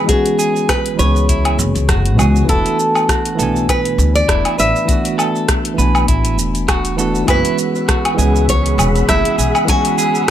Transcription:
Already playing: E3 G#3 B3 C#4 G#4
0.04 E3 G#3 B3
0.09 C#4 F#4 G#4, kick, closed hi-hat, shaker
0.26 closed hi-hat, shaker
0.39 G#4, shaker
0.56 shaker
0.69 B4, kick, cross-stick, closed hi-hat, low woodblock, shaker
0.86 closed hi-hat
0.95 C#2 E3 G#3 B3 B4
0.99 C#4 G#4 C#5, shaker
1.16 shaker
1.29 E4, kick, closed hi-hat, shaker
1.45 closed hi-hat, low woodblock
1.59 F#1, shaker
1.75 C#2, closed hi-hat, shaker
1.89 F#1 F#4, kick, cross-stick, closed hi-hat, shaker
2.06 closed hi-hat
2.17 C#2 E3 G#3 B3 C#4 F#4 G#4, low woodblock, shaker
2.36 shaker
2.45 E1 E3 A3 B3 E4, kick, closed hi-hat
2.49 D4 F#4 A4, shaker
2.66 closed hi-hat, shaker
2.80 shaker
2.95 low woodblock, shaker
3.09 F#4, kick, cross-stick, closed hi-hat, shaker
3.25 closed hi-hat
3.35 B1 E3 A3 B3
3.39 D4 A4 G#5, shaker
3.56 shaker
3.69 B4, kick, closed hi-hat, low woodblock, shaker
3.85 closed hi-hat
3.98 D2, shaker
4.15 D5, closed hi-hat, shaker
4.28 E1 E4, kick, cross-stick, closed hi-hat, shaker
4.45 closed hi-hat, low woodblock
4.58 A1 B4 E5, shaker
4.76 shaker
4.85 E3 A3 B3 F#4, kick, closed hi-hat
4.89 D4 F#4, shaker
5.05 closed hi-hat, shaker
5.18 A4, low woodblock, shaker
5.36 shaker
5.49 kick, cross-stick, closed hi-hat, shaker
5.65 closed hi-hat
5.74 B1 E3 A3 B3 B4
5.79 D4 G#5, shaker
5.95 low woodblock, shaker
6.08 A1 E4, kick, closed hi-hat, shaker
6.25 closed hi-hat, shaker
6.38 E1, shaker
6.55 closed hi-hat, shaker
6.68 F#4, kick, cross-stick, closed hi-hat, low woodblock, shaker
6.85 closed hi-hat, shaker
6.96 E3 A3 B3 D4 F#4 A4, shaker
7.15 shaker
7.24 E3 G#3 B3 E4, closed hi-hat, low woodblock
7.28 F#1 C#4 F#4 G#4 B4 F#5 B5 E6, kick, shaker
7.45 closed hi-hat, shaker
7.59 shaker
7.75 shaker
7.88 F#4, kick, cross-stick, closed hi-hat, shaker
8.05 closed hi-hat, low woodblock
8.15 C#2 E3 G#3 B3 G#4
8.19 C#4 G#4, shaker
8.36 shaker
8.48 C#5, kick, closed hi-hat, shaker
8.66 closed hi-hat
8.78 E1, low woodblock, shaker
8.96 closed hi-hat, shaker
9.09 F#1 E4 E5, kick, cross-stick, closed hi-hat, shaker
9.25 closed hi-hat
9.38 B1 G#4, shaker
9.55 low woodblock, shaker
9.65 E3 G#3 F#4, kick, closed hi-hat
9.69 B3 C#4 F#4 G#5, shaker
9.85 closed hi-hat, shaker
9.98 G#4, shaker
10.15 shaker

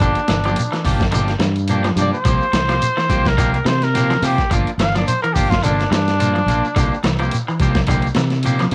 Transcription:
Already playing: D4
0.00 G1 D3 F3 A#3 D4 G4, kick, shekere
0.15 closed hi-hat, shekere
0.28 G1 E3, snare, closed hi-hat, high conga, low conga, shekere
0.44 F3 A#3 D4 G4, closed hi-hat, high conga, shekere
0.56 closed hi-hat, shekere
0.72 E3, snare, closed hi-hat, shekere
0.85 G1 F3 A#3 D4 G4, kick, open hi-hat, low conga, shekere
1.00 kick, snare, high conga, shekere
1.12 D3 F3 A#3 D4 G4, closed hi-hat, shekere
1.28 snare, closed hi-hat, shekere
1.39 G2 E3, snare, closed hi-hat, high conga, shekere
1.56 closed hi-hat, shekere
1.68 F3 A#3 D4 G4, closed hi-hat, shekere
1.84 F3, snare, closed hi-hat, high conga, shekere
1.96 G2 F3 A#3 D4 G4, closed hi-hat, high conga, low conga, shekere
2.01 D5
2.13 C5, shekere
2.25 C2 F3 A#3 C4 G4, kick, closed hi-hat, shekere
2.42 shekere
2.53 C2 E3, snare, closed hi-hat, high conga, low conga, shekere
2.69 F3 A#3 C4 G4, snare, closed hi-hat, shekere
2.82 closed hi-hat, shekere
2.97 E3, snare, shekere
3.09 C2 F3 A#3 C4 G4, kick, snare, closed hi-hat, low conga, shekere
3.25 A#4, kick, snare, closed hi-hat, high conga, shekere
3.38 F3 A#3 C4 G4, muted clean electric guitar stroke, kick, snare, closed hi-hat, high conga, low conga, shekere
3.54 A#4, closed hi-hat, shekere
3.65 C3 E3 C5, snare, closed hi-hat, high conga, shekere
3.82 A#4, snare, closed hi-hat, shekere
3.94 F3 A#3 C4 G4, snare, closed hi-hat, shekere
4.10 F3, snare, closed hi-hat, high conga, shekere
4.22 C3 F3 A#3 C4 G4, open hi-hat, high conga, low conga, shekere
4.38 kick, snare, closed hi-hat, shekere
4.51 G1 F3 A#3 D4 F4, muted clean electric guitar stroke, kick, closed hi-hat, shekere
4.67 closed hi-hat, shekere
4.78 G1 E3, snare, closed hi-hat, high conga, shekere
4.82 F5
4.95 F3 A#3 D4 D5, snare, closed hi-hat, high conga, shekere
5.08 C5, closed hi-hat, shekere
5.22 E3 A#4, closed hi-hat, shekere
5.33 G1 F3 A#3 D4 F4 G4, kick, open hi-hat, low conga, shekere
5.50 F4, kick, snare, high conga, shekere
5.63 D3 F3 A#3 D4 F4, closed hi-hat, high conga, low conga, shekere
5.79 snare, closed hi-hat, shekere
5.91 G2 E3 D4, snare, closed hi-hat, high conga, shekere
6.08 snare, closed hi-hat, shekere
6.20 F3 A#3 D4 F4, closed hi-hat, shekere
6.35 F3, closed hi-hat, high conga, shekere
6.46 A#1 A#3 D4 F4, muted clean electric guitar stroke, closed hi-hat, high conga, low conga, shekere
6.65 shekere
6.76 C2 D3 F3 A#3 C4 G4, kick, closed hi-hat, shekere
6.94 shekere
7.04 C2 E3, snare, closed hi-hat, high conga, shekere
7.19 F3 A#3 C4 G4, closed hi-hat, shekere
7.31 closed hi-hat, shekere
7.48 E3, shekere
7.59 C2 F3 A#3 C4 G4, kick, closed hi-hat, low conga, shekere
7.75 kick, snare, closed hi-hat, high conga, shekere
7.87 D3 F3 A#3 C4 G4, kick, closed hi-hat, high conga, shekere
8.02 closed hi-hat
8.07 shekere
8.15 C3 E3, snare, closed hi-hat, high conga, shekere
8.30 snare, closed hi-hat, shekere
8.43 F3 A#3 C4 G4, closed hi-hat, shekere
8.59 F3, snare, closed hi-hat, high conga, shekere
8.71 C3, open hi-hat

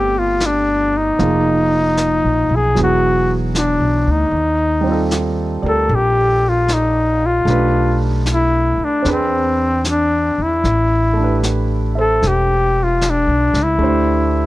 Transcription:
Already playing: G1 G3 A3 B3 C4 G4 D5
0.19 F4
0.40 snare, hi-hat pedal
0.46 D4
0.97 D#4
1.19 F1 F3 A#3 D#4 G#4, brush sweep, snare
1.97 snare, hi-hat pedal
2.24 A#1
2.49 B1
2.56 G#4
2.75 E1 E3 F#3 B3 G#4, brush sweep, snare
2.83 F#4
3.55 D4, snare, hi-hat pedal
3.80 B1
4.07 D2 D#4
4.31 D#2, brush sweep
4.81 G3 C4
4.88 F4 A4
5.11 snare, hi-hat pedal
5.62 D2 G4 A#4 D5
5.68 A4
5.89 A#1, brush sweep
5.95 G4
6.49 F4
6.68 snare, hi-hat pedal
6.73 D#4
7.26 F4
7.45 B1 A3 D4 G4, brush sweep, snare
7.50 B4
8.26 snare, hi-hat pedal
8.34 E4
8.78 muted upright bass stroke
8.84 D4
9.03 E2 C4 D4 G#4, brush sweep, snare
9.08 B4
9.12 C4
9.84 snare, hi-hat pedal
9.89 D4
10.38 E2
10.43 E4
10.64 A1, brush sweep, snare
11.13 A3 D4
11.21 G4 B4
11.43 snare, hi-hat pedal
11.95 A4 C5 E5
12.00 A4
12.22 E1, brush sweep, snare
12.27 G4
12.83 F4
13.01 snare, hi-hat pedal
13.10 D4
13.27 B1
13.54 C#2, snare
13.63 E4
13.78 D2 A3 D4 G4, brush sweep
13.83 C5

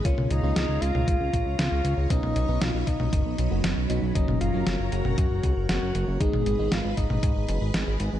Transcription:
Already playing: G#4
0.05 C#2 A#3 C#4 F4 C#5 F5 A#5, kick, closed hi-hat
0.18 C#2, mid tom
0.30 C#2 D#4, closed hi-hat
0.43 C#2 A#3 C#4 F4
0.56 C#2, snare, closed hi-hat
0.69 C#2
0.82 C#2 F4, closed hi-hat
0.95 C#2, mid tom
1.08 G#1, kick, closed hi-hat
1.20 C#2
1.33 A#1, kick, closed hi-hat
1.46 C#2
1.59 C#2 F4, snare, closed hi-hat
1.71 C#2
1.84 C#2, closed hi-hat
1.97 C#2
2.10 B1 F#3 B3 C#4 D#4 D#5 B5, kick, closed hi-hat
2.23 B1, mid tom
2.36 B1, closed hi-hat
2.48 B1 B3 C#4 D#4
2.61 B1 F4, snare, closed hi-hat
2.74 B1
2.87 B1 D#4, kick, closed hi-hat
3.00 B1, mid tom
3.13 F#1, kick, closed hi-hat
3.26 B1
3.38 B1, closed hi-hat
3.51 F#1 B3 C#4 F#4
3.64 F#1, snare, closed hi-hat
3.77 B1
3.90 B1 B3 C#4 D#4, closed hi-hat
4.02 B1
4.15 F#1 F#3 A#3 C#4 D#4 A#4 C#5 A#5, kick, closed hi-hat
4.28 F#1, mid tom
4.41 F#1 F4, closed hi-hat
4.54 F#1 F#3 A#3 C#4
4.67 F#1, snare, closed hi-hat
4.80 F#1
4.92 F#1 F#4, closed hi-hat
5.05 F#1, mid tom
5.18 F#2, kick, closed hi-hat
5.31 F#1
5.43 C#2, kick, closed hi-hat
5.57 F#1
5.69 F#1 F#4, snare, closed hi-hat
5.82 F#1
5.95 F#1, closed hi-hat
6.08 F#1
6.20 G#1 G#3 B3 D#4 G#4 B4 D#5 B5, kick, closed hi-hat
6.33 G#1, mid tom
6.46 G#1, closed hi-hat
6.59 G#1 G#3 B3 D#4
6.72 G#1 F4, snare, closed hi-hat
6.85 G#1
6.97 G#1 D#4, kick, closed hi-hat
7.10 G#1, mid tom
7.23 G#2, kick, closed hi-hat
7.36 G#1
7.49 F#1, closed hi-hat
7.61 G#1
7.74 G#1, snare, closed hi-hat
7.87 G#1
8.00 G#1, closed hi-hat
8.13 G#1

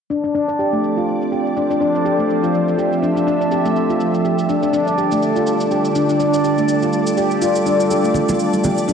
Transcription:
0.10 F3 C4 D4 A4 D5, shaker
0.24 D4, shaker
0.34 D4, shaker
0.48 D5, shaker
0.59 G4, shaker
0.73 A3, shaker
0.84 shaker
0.97 F4, shaker
1.08 shaker
1.22 shaker
1.32 G4, shaker
1.46 shaker
1.56 D4, shaker
1.70 D4, shaker
1.81 D4, shaker
1.95 D5, shaker
2.05 G4 E5, shaker
2.19 A3, shaker
2.30 shaker
2.43 F4, shaker
2.54 shaker
2.68 shaker
2.78 G4, shaker
2.93 shaker
3.02 D4, shaker
3.16 D4, shaker
3.27 D4, shaker
3.41 D5, shaker
3.51 G4, shaker
3.65 A3, shaker
3.76 shaker
3.90 F4, shaker
3.99 D3 G3 D4 D5, shaker
4.14 shaker
4.25 G4, shaker
4.39 shaker
4.49 D4, shaker
4.63 D4, shaker
4.73 D4, shaker
4.87 D5, shaker
4.98 G4, shaker
5.12 A3, shaker
5.22 shaker
5.36 F4, shaker
5.47 shaker
5.61 shaker
5.71 G4, shaker
5.85 shaker
5.95 D4, shaker
6.09 D4, shaker
6.20 D4, shaker
6.34 D5, shaker
6.44 G4, shaker
6.58 A3, shaker
6.68 shaker
6.82 F4, shaker
6.93 shaker
7.07 shaker
7.17 G4, shaker
7.31 shaker
7.42 F4, shaker
7.56 A4, shaker
7.66 D4, shaker
7.80 F4, shaker
7.90 F3 C4 G4 E5, muted conga, shaker
8.04 A3, shaker
8.14 low conga, shaker
8.29 F4, muted conga, high conga, low conga, shaker
8.39 shaker
8.53 muted conga, shaker
8.64 G4, low conga, shaker
8.78 muted conga, shaker
8.88 D4, high conga, shaker

